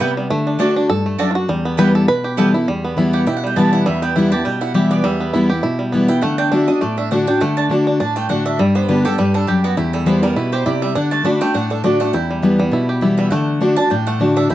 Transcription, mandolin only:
0.00 0.10 B3 medium
0.00 0.10 E4 loud
0.00 0.11 B4 loud
0.00 0.11 G5 loud
0.59 0.69 A3 loud
0.59 0.70 F#4 medium
0.59 0.70 D5 loud
0.59 0.70 A5 loud
1.18 1.29 A3 loud
1.18 1.29 F#4 loud
1.18 1.29 D5 loud
1.18 1.29 A5 loud
1.77 1.88 B3 loud
1.77 1.88 E4 medium
1.77 1.88 B4 loud
1.77 1.89 G5 loud
2.37 2.47 B3 loud
2.37 2.48 E4 loud
2.37 2.48 B4 loud
2.37 2.48 G5 loud
3.13 3.26 F#5 loud
3.27 3.36 G5 loud
3.37 3.46 F#5 medium
3.46 3.56 G5 medium
3.56 3.72 A5 medium
3.73 3.86 F#5 loud
3.86 4.02 E5 medium
4.02 4.15 G5 loud
4.16 4.31 F#5 medium
4.32 4.44 A5 loud
4.45 4.61 G5 medium
4.61 4.74 F#5 medium
4.74 4.90 E5 medium
4.91 5.04 D5 loud
5.04 5.59 E5 medium
6.08 6.21 G5 loud
6.22 6.38 F#5 medium
6.38 6.51 G5 loud
6.52 6.68 E5 medium
6.68 6.81 D#5 loud
6.81 6.97 D5 medium
6.97 7.11 E5 medium
7.11 7.27 F#5 medium
7.27 7.40 G5 loud
7.41 7.56 F#5 medium
7.57 7.65 A5 loud
8.00 8.16 A5 medium
8.16 8.29 G5 loud
8.29 8.45 F#5 loud
8.46 8.59 E5 loud
8.59 8.75 D5 medium
8.75 8.88 C5 medium
8.88 9.04 B4 medium
9.05 9.18 A4 loud
9.18 9.34 B4 medium
9.34 9.47 A4 medium
9.47 9.63 G4 medium
9.64 9.77 F#4 medium
9.77 9.93 G4 medium
9.93 10.06 A4 medium
10.06 10.22 C5 loud
10.23 10.36 A#4 loud
10.36 10.52 B4 medium
10.52 10.65 C5 loud
10.66 10.82 D5 medium
10.82 10.95 E5 loud
10.95 11.11 F#5 medium
11.11 11.24 A5 loud
11.25 11.41 B5 loud
11.41 11.54 G5 loud
11.54 11.70 F#5 medium
11.70 11.83 A4 medium
11.84 12.00 D5 loud
12.00 12.13 F#5 loud
12.13 12.98 G5 medium
13.18 13.30 E5 loud
13.31 13.74 F#5 medium
13.76 13.90 A5 loud
13.90 14.06 G5 medium
14.07 14.20 F#5 loud
14.37 14.50 E5 loud
14.50 14.55 G5 medium

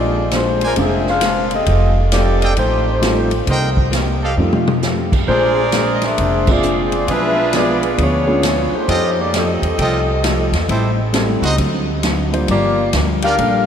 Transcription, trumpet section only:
0.62 0.72 A#4 medium
0.62 0.72 C5 medium
0.62 0.72 D5 medium
0.62 0.72 G#5 medium
2.41 2.52 A4 medium
2.41 2.52 D#5 medium
2.41 2.52 F5 medium
2.41 2.52 G5 loud
3.47 3.68 A#4 medium
3.47 3.68 C5 medium
3.47 3.67 D#5 medium
3.47 3.67 G5 medium
4.22 4.32 G4 medium
4.22 4.32 A4 medium
4.22 4.32 D#5 medium
4.22 4.32 F5 medium
5.27 6.53 G#4 medium
5.27 6.53 A#4 medium
5.27 6.53 C5 medium
5.27 6.53 D5 medium
7.07 8.33 D4 medium
7.07 8.34 F4 medium
7.07 8.34 G#4 medium
7.07 8.33 B4 medium
8.88 9.08 F4 medium
8.88 9.08 G4 medium
8.88 9.08 A4 medium
8.88 9.08 D#5 medium
9.78 9.98 F4 medium
9.78 9.98 G4 medium
9.78 9.98 A4 medium
9.78 9.98 D#5 medium
10.68 10.88 E4 medium
10.68 10.88 G4 medium
10.68 10.88 A4 medium
10.68 10.88 C5 medium
11.42 11.53 D#4 medium
11.42 11.53 F#4 medium
11.42 11.53 C5 medium
11.42 11.53 D#5 medium
13.23 13.33 F4 medium
13.23 13.33 G4 medium
13.23 13.34 A#4 medium
13.23 13.34 D5 medium

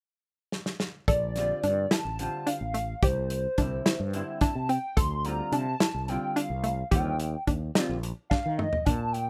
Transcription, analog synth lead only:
1.08 1.94 D5 medium
1.92 2.49 A5 loud
2.47 3.05 F5 loud
3.04 4.14 C5 medium
4.42 4.71 A5 medium
4.69 4.99 G5 loud
4.97 5.27 C6 loud
5.26 5.52 A#5 loud
5.53 6.11 A5 loud
6.09 6.36 G5 medium
6.36 6.88 F5 medium
6.92 7.44 G5 medium
8.30 8.56 F5 medium
8.58 8.87 D#5 medium
8.85 9.14 A5 medium
9.13 9.30 G5 medium

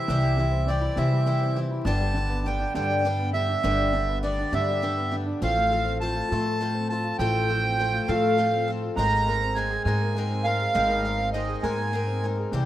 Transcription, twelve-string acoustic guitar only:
0.09 0.38 C3 medium
0.09 0.39 G3 medium
0.09 0.39 C4 medium
0.09 0.38 E4 medium
0.09 0.37 G4 medium
0.38 0.67 C4 soft
0.38 0.68 E4 soft
0.38 0.68 G4 medium
0.68 0.97 G3 medium
0.68 0.97 C4 medium
0.68 0.97 E4 medium
0.68 0.96 G4 medium
0.97 1.27 C3 medium
0.97 1.25 G3 medium
0.97 1.26 C4 medium
0.97 1.26 E4 medium
0.97 1.27 G4 medium
1.26 1.56 G3 medium
1.26 1.56 C4 medium
1.26 1.57 E4 medium
1.26 1.55 G4 medium
1.56 1.87 C4 soft
1.56 1.87 E4 soft
1.56 1.86 G4 medium
1.86 2.16 G2 medium
1.86 2.16 D3 medium
1.86 2.16 G3 medium
1.86 2.16 B3 medium
1.86 2.16 D4 medium
1.86 2.15 G4 medium
2.16 2.45 G3 soft
2.16 2.46 B3 soft
2.16 2.46 D4 soft
2.16 2.45 G4 medium
2.46 2.75 G3 medium
2.46 2.74 B3 medium
2.46 2.74 D4 medium
2.46 2.74 G4 medium
2.75 3.05 G2 medium
2.75 3.05 D3 medium
2.75 3.04 G3 medium
2.75 3.04 B3 medium
2.75 3.05 D4 medium
2.75 3.05 G4 medium
3.05 3.34 G3 medium
3.05 3.34 B3 medium
3.05 3.34 D4 medium
3.05 3.33 G4 medium
3.34 3.63 G3 soft
3.34 3.63 B3 soft
3.34 3.63 D4 soft
3.34 3.64 G4 medium
3.63 3.93 G2 medium
3.63 3.93 D3 medium
3.63 3.93 G3 medium
3.63 3.93 B3 medium
3.63 3.92 D4 medium
3.63 3.92 G4 medium
3.93 4.22 G3 soft
3.93 4.22 B3 soft
3.93 4.23 D4 medium
3.93 4.23 G4 medium
4.23 4.52 G3 medium
4.23 4.52 B3 medium
4.23 4.52 D4 medium
4.23 4.51 G4 medium
4.53 4.83 G2 medium
4.53 4.83 D3 medium
4.53 4.81 G3 medium
4.53 4.81 B3 medium
4.53 4.82 D4 medium
4.53 4.82 G4 medium
4.82 5.12 G3 medium
4.82 5.12 B3 medium
4.82 5.11 D4 medium
4.82 5.10 G4 medium
5.11 5.41 G3 soft
5.11 5.42 B3 soft
5.11 5.42 D4 soft
5.11 5.41 G4 soft
5.42 5.71 A3 medium
5.42 5.71 C4 medium
5.42 5.72 F4 medium
5.42 5.71 A4 medium
5.72 6.02 C4 soft
5.72 6.01 F4 soft
5.72 6.01 A4 medium
6.02 6.31 A3 medium
6.02 6.31 C4 medium
6.02 6.31 F4 medium
6.02 6.31 A4 medium
6.32 6.59 A3 medium
6.32 6.60 C4 medium
6.32 6.61 F4 medium
6.32 6.61 A4 medium
6.61 6.90 A3 medium
6.61 6.90 C4 medium
6.61 6.91 F4 medium
6.61 6.89 A4 medium
6.90 7.19 C4 soft
6.90 7.20 F4 medium
6.90 7.20 A4 soft
7.20 7.49 A3 medium
7.20 7.49 C4 medium
7.20 7.49 F4 medium
7.20 7.48 A4 medium
7.49 7.79 C4 soft
7.49 7.79 F4 soft
7.49 7.79 A4 medium
7.79 8.08 A3 medium
7.79 8.08 C4 medium
7.79 8.08 F4 medium
7.79 8.07 A4 medium
8.08 8.36 A3 medium
8.08 8.37 C4 medium
8.08 8.38 F4 medium
8.08 8.38 A4 medium
8.38 8.67 A3 medium
8.38 8.68 C4 medium
8.38 8.68 F4 medium
8.38 8.67 A4 medium
8.68 8.98 C4 soft
8.68 8.98 F4 soft
8.68 8.97 A4 medium
8.98 9.27 G#3 medium
8.98 9.28 C4 medium
8.98 9.27 D#4 medium
8.98 9.27 A#4 medium
9.29 9.56 C4 soft
9.29 9.57 D#4 soft
9.29 9.57 A#4 soft
9.56 9.86 G#3 medium
9.56 9.86 C4 medium
9.56 9.87 D#4 medium
9.56 9.86 A#4 medium
9.87 10.15 G#3 medium
9.87 10.16 C4 medium
9.87 10.16 D#4 medium
9.87 10.16 A#4 medium
10.17 10.46 G#3 medium
10.17 10.46 C4 medium
10.17 10.46 D#4 medium
10.17 10.44 A#4 medium
10.46 10.74 C4 soft
10.46 10.74 D#4 soft
10.46 10.75 A#4 medium
10.74 11.04 G#3 medium
10.74 11.05 C4 medium
10.74 11.04 D#4 medium
10.74 11.04 A#4 medium
11.05 11.33 C4 soft
11.05 11.34 D#4 medium
11.05 11.34 A#4 medium
11.34 11.64 G#3 medium
11.34 11.63 C4 medium
11.34 11.63 D#4 medium
11.34 11.62 A#4 medium
11.64 11.92 G#3 medium
11.64 11.92 C4 medium
11.64 11.93 D#4 medium
11.64 11.93 A#4 medium
11.93 12.23 G#3 medium
11.93 12.23 C4 medium
11.93 12.24 D#4 medium
11.93 12.23 A#4 medium
12.24 12.52 C4 soft
12.24 12.54 D#4 soft
12.24 12.53 A#4 soft
12.53 12.65 C3 medium
12.53 12.65 G3 medium
12.53 12.65 C4 medium
12.53 12.65 E4 medium
12.53 12.65 G4 medium

